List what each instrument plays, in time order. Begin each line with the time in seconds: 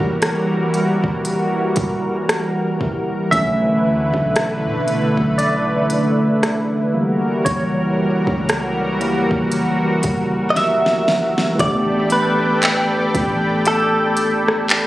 Already playing: analog synth pad E3 G3 F#4 A#4, tine electric piano E3 G3 A#3 A#4 C#5
0.00 kick
0.22 cross-stick, closed hi-hat
0.74 closed hi-hat
1.04 kick
1.25 closed hi-hat
1.76 kick, closed hi-hat
2.29 cross-stick, closed hi-hat
2.81 kick
3.31 808-style bass B1, tine electric piano D3 E3 A3 C#4 E5, analog synth pad D3 A3 E4 B4, kick, closed hi-hat
3.84 808-style bass D2
4.14 808-style bass B1, kick
4.36 cross-stick, closed hi-hat
4.66 808-style bass B2
4.88 closed hi-hat
5.17 808-style bass B1, kick
5.38 tine electric piano D5, closed hi-hat
5.90 closed hi-hat
6.43 cross-stick, closed hi-hat
6.93 tine electric piano E3 G3 A#3, analog synth pad E3 G3 F#4 A#4
7.45 808-style bass F#1, tine electric piano C#5, kick, closed hi-hat
8.27 808-style bass C#2, kick
8.49 cross-stick, closed hi-hat
9.00 tine electric piano E3 G3 A#3, closed hi-hat
9.31 808-style bass F#1, kick
9.52 closed hi-hat
10.03 808-style bass F#1, kick, closed hi-hat
10.50 clean electric guitar D#5
10.56 clean electric guitar E5, snare, closed hi-hat
10.86 snare
11.08 snare
11.38 snare
11.55 tine electric piano E3 A3 B3, analog synth pad A4 D5 G5 B5
11.59 808-style bass A1, tine electric piano D4 G4, clean electric guitar D5, kick, closed hi-hat
12.10 clean electric guitar B4, closed hi-hat
12.63 synth bell G5, clap, closed hi-hat
13.15 808-style bass A1, kick, closed hi-hat
13.65 clean electric guitar A4, closed hi-hat
14.17 closed hi-hat
14.48 cross-stick
14.70 clap, closed hi-hat